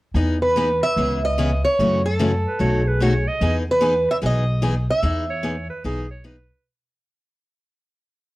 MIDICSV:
0, 0, Header, 1, 5, 480
1, 0, Start_track
1, 0, Key_signature, 4, "major"
1, 0, Tempo, 405680
1, 194, Time_signature, 4, 2, 24, 8
1, 9888, End_track
2, 0, Start_track
2, 0, Title_t, "Steel-string acoustic guitar"
2, 0, Program_c, 0, 25
2, 505, Note_on_c, 0, 71, 85
2, 946, Note_off_c, 0, 71, 0
2, 987, Note_on_c, 0, 76, 94
2, 1471, Note_off_c, 0, 76, 0
2, 1476, Note_on_c, 0, 75, 86
2, 1940, Note_off_c, 0, 75, 0
2, 1945, Note_on_c, 0, 73, 83
2, 2386, Note_off_c, 0, 73, 0
2, 2432, Note_on_c, 0, 69, 75
2, 3343, Note_off_c, 0, 69, 0
2, 3343, Note_on_c, 0, 68, 75
2, 3813, Note_off_c, 0, 68, 0
2, 4387, Note_on_c, 0, 71, 82
2, 4852, Note_off_c, 0, 71, 0
2, 4860, Note_on_c, 0, 76, 89
2, 4919, Note_off_c, 0, 76, 0
2, 5037, Note_on_c, 0, 75, 81
2, 5745, Note_off_c, 0, 75, 0
2, 5801, Note_on_c, 0, 76, 81
2, 6818, Note_off_c, 0, 76, 0
2, 6818, Note_on_c, 0, 75, 81
2, 7360, Note_off_c, 0, 75, 0
2, 9888, End_track
3, 0, Start_track
3, 0, Title_t, "Clarinet"
3, 0, Program_c, 1, 71
3, 2914, Note_on_c, 1, 71, 65
3, 3073, Note_off_c, 1, 71, 0
3, 3080, Note_on_c, 1, 73, 74
3, 3394, Note_on_c, 1, 71, 76
3, 3411, Note_off_c, 1, 73, 0
3, 3579, Note_on_c, 1, 73, 86
3, 3597, Note_off_c, 1, 71, 0
3, 3872, Note_on_c, 1, 75, 89
3, 3889, Note_off_c, 1, 73, 0
3, 4192, Note_off_c, 1, 75, 0
3, 6269, Note_on_c, 1, 73, 91
3, 6706, Note_off_c, 1, 73, 0
3, 6739, Note_on_c, 1, 71, 78
3, 6904, Note_off_c, 1, 71, 0
3, 6923, Note_on_c, 1, 68, 74
3, 7195, Note_off_c, 1, 68, 0
3, 7231, Note_on_c, 1, 73, 75
3, 7401, Note_on_c, 1, 71, 72
3, 7419, Note_off_c, 1, 73, 0
3, 7877, Note_off_c, 1, 71, 0
3, 9888, End_track
4, 0, Start_track
4, 0, Title_t, "Steel-string acoustic guitar"
4, 0, Program_c, 2, 25
4, 186, Note_on_c, 2, 52, 61
4, 193, Note_on_c, 2, 59, 62
4, 199, Note_on_c, 2, 63, 67
4, 202, Note_on_c, 2, 68, 62
4, 439, Note_off_c, 2, 52, 0
4, 442, Note_off_c, 2, 59, 0
4, 446, Note_off_c, 2, 63, 0
4, 447, Note_off_c, 2, 68, 0
4, 668, Note_on_c, 2, 52, 75
4, 679, Note_on_c, 2, 59, 80
4, 682, Note_on_c, 2, 68, 80
4, 686, Note_on_c, 2, 63, 73
4, 803, Note_off_c, 2, 52, 0
4, 809, Note_off_c, 2, 59, 0
4, 810, Note_off_c, 2, 68, 0
4, 812, Note_off_c, 2, 63, 0
4, 1152, Note_on_c, 2, 49, 48
4, 1158, Note_on_c, 2, 52, 56
4, 1162, Note_on_c, 2, 68, 54
4, 1165, Note_on_c, 2, 61, 59
4, 1166, Note_on_c, 2, 59, 56
4, 1402, Note_off_c, 2, 49, 0
4, 1405, Note_off_c, 2, 52, 0
4, 1407, Note_off_c, 2, 68, 0
4, 1409, Note_off_c, 2, 59, 0
4, 1409, Note_off_c, 2, 61, 0
4, 1628, Note_on_c, 2, 49, 69
4, 1632, Note_on_c, 2, 52, 82
4, 1638, Note_on_c, 2, 68, 85
4, 1639, Note_on_c, 2, 61, 83
4, 1641, Note_on_c, 2, 59, 77
4, 1763, Note_off_c, 2, 49, 0
4, 1765, Note_off_c, 2, 52, 0
4, 1768, Note_off_c, 2, 68, 0
4, 1769, Note_off_c, 2, 59, 0
4, 1769, Note_off_c, 2, 61, 0
4, 2123, Note_on_c, 2, 49, 58
4, 2125, Note_on_c, 2, 52, 64
4, 2132, Note_on_c, 2, 57, 68
4, 2135, Note_on_c, 2, 61, 68
4, 2135, Note_on_c, 2, 66, 67
4, 2367, Note_off_c, 2, 49, 0
4, 2368, Note_off_c, 2, 52, 0
4, 2372, Note_off_c, 2, 57, 0
4, 2373, Note_off_c, 2, 61, 0
4, 2373, Note_off_c, 2, 66, 0
4, 2592, Note_on_c, 2, 49, 79
4, 2596, Note_on_c, 2, 57, 71
4, 2597, Note_on_c, 2, 52, 76
4, 2605, Note_on_c, 2, 61, 85
4, 2609, Note_on_c, 2, 66, 86
4, 2725, Note_off_c, 2, 49, 0
4, 2727, Note_off_c, 2, 52, 0
4, 2727, Note_off_c, 2, 57, 0
4, 2731, Note_off_c, 2, 61, 0
4, 2733, Note_off_c, 2, 66, 0
4, 3063, Note_on_c, 2, 47, 56
4, 3070, Note_on_c, 2, 54, 57
4, 3072, Note_on_c, 2, 57, 61
4, 3077, Note_on_c, 2, 63, 56
4, 3078, Note_on_c, 2, 66, 60
4, 3317, Note_off_c, 2, 47, 0
4, 3320, Note_off_c, 2, 54, 0
4, 3321, Note_off_c, 2, 57, 0
4, 3324, Note_off_c, 2, 63, 0
4, 3324, Note_off_c, 2, 66, 0
4, 3549, Note_on_c, 2, 47, 76
4, 3558, Note_on_c, 2, 54, 68
4, 3566, Note_on_c, 2, 57, 77
4, 3567, Note_on_c, 2, 63, 92
4, 3570, Note_on_c, 2, 66, 96
4, 3683, Note_off_c, 2, 47, 0
4, 3687, Note_off_c, 2, 54, 0
4, 3691, Note_off_c, 2, 57, 0
4, 3692, Note_off_c, 2, 63, 0
4, 3693, Note_off_c, 2, 66, 0
4, 4032, Note_on_c, 2, 52, 68
4, 4034, Note_on_c, 2, 59, 68
4, 4043, Note_on_c, 2, 63, 69
4, 4044, Note_on_c, 2, 68, 62
4, 4280, Note_off_c, 2, 52, 0
4, 4282, Note_off_c, 2, 59, 0
4, 4286, Note_off_c, 2, 63, 0
4, 4287, Note_off_c, 2, 68, 0
4, 4500, Note_on_c, 2, 59, 81
4, 4503, Note_on_c, 2, 52, 72
4, 4515, Note_on_c, 2, 63, 84
4, 4515, Note_on_c, 2, 68, 87
4, 4638, Note_off_c, 2, 59, 0
4, 4639, Note_off_c, 2, 52, 0
4, 4645, Note_off_c, 2, 63, 0
4, 4645, Note_off_c, 2, 68, 0
4, 4986, Note_on_c, 2, 52, 54
4, 4986, Note_on_c, 2, 59, 58
4, 5000, Note_on_c, 2, 68, 71
4, 5003, Note_on_c, 2, 63, 56
4, 5237, Note_off_c, 2, 52, 0
4, 5237, Note_off_c, 2, 59, 0
4, 5244, Note_off_c, 2, 68, 0
4, 5246, Note_off_c, 2, 63, 0
4, 5462, Note_on_c, 2, 52, 74
4, 5465, Note_on_c, 2, 59, 78
4, 5473, Note_on_c, 2, 68, 90
4, 5475, Note_on_c, 2, 63, 76
4, 5598, Note_off_c, 2, 52, 0
4, 5600, Note_off_c, 2, 59, 0
4, 5603, Note_off_c, 2, 68, 0
4, 5605, Note_off_c, 2, 63, 0
4, 5942, Note_on_c, 2, 52, 54
4, 5947, Note_on_c, 2, 59, 65
4, 5952, Note_on_c, 2, 63, 69
4, 5955, Note_on_c, 2, 68, 71
4, 6195, Note_off_c, 2, 52, 0
4, 6197, Note_off_c, 2, 59, 0
4, 6200, Note_off_c, 2, 63, 0
4, 6201, Note_off_c, 2, 68, 0
4, 6422, Note_on_c, 2, 52, 73
4, 6425, Note_on_c, 2, 59, 76
4, 6435, Note_on_c, 2, 63, 69
4, 6436, Note_on_c, 2, 68, 83
4, 6558, Note_off_c, 2, 52, 0
4, 6559, Note_off_c, 2, 59, 0
4, 6564, Note_off_c, 2, 63, 0
4, 6565, Note_off_c, 2, 68, 0
4, 6913, Note_on_c, 2, 52, 55
4, 6921, Note_on_c, 2, 59, 55
4, 6923, Note_on_c, 2, 63, 64
4, 6925, Note_on_c, 2, 68, 58
4, 7161, Note_off_c, 2, 52, 0
4, 7165, Note_off_c, 2, 59, 0
4, 7166, Note_off_c, 2, 63, 0
4, 7167, Note_off_c, 2, 68, 0
4, 7385, Note_on_c, 2, 52, 72
4, 7389, Note_on_c, 2, 59, 75
4, 7391, Note_on_c, 2, 63, 77
4, 7392, Note_on_c, 2, 68, 86
4, 7520, Note_off_c, 2, 52, 0
4, 7522, Note_off_c, 2, 59, 0
4, 7523, Note_off_c, 2, 63, 0
4, 7524, Note_off_c, 2, 68, 0
4, 9888, End_track
5, 0, Start_track
5, 0, Title_t, "Upright bass"
5, 0, Program_c, 3, 32
5, 177, Note_on_c, 3, 40, 86
5, 953, Note_off_c, 3, 40, 0
5, 1145, Note_on_c, 3, 37, 77
5, 1917, Note_off_c, 3, 37, 0
5, 2116, Note_on_c, 3, 42, 82
5, 2883, Note_off_c, 3, 42, 0
5, 3071, Note_on_c, 3, 35, 78
5, 3839, Note_off_c, 3, 35, 0
5, 4027, Note_on_c, 3, 40, 84
5, 4797, Note_off_c, 3, 40, 0
5, 4999, Note_on_c, 3, 35, 76
5, 5764, Note_off_c, 3, 35, 0
5, 5948, Note_on_c, 3, 40, 84
5, 6717, Note_off_c, 3, 40, 0
5, 6916, Note_on_c, 3, 35, 76
5, 7683, Note_off_c, 3, 35, 0
5, 9888, End_track
0, 0, End_of_file